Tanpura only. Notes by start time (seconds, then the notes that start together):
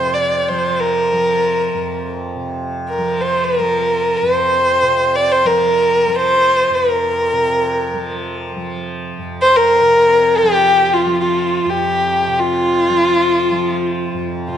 Already playing: F2 C3 F3
0.50 F3
1.12 F3
1.74 F2
2.36 C3
2.98 F3
3.59 F3
4.22 F2
4.83 C3
5.45 F3
6.07 F3
6.70 F2
7.32 C3
7.94 F3
8.56 F3
9.18 F2
9.81 C3
10.43 F3
11.05 F3
11.66 F2
12.27 C3
12.90 F3
13.51 F3
14.14 F2
14.48 C3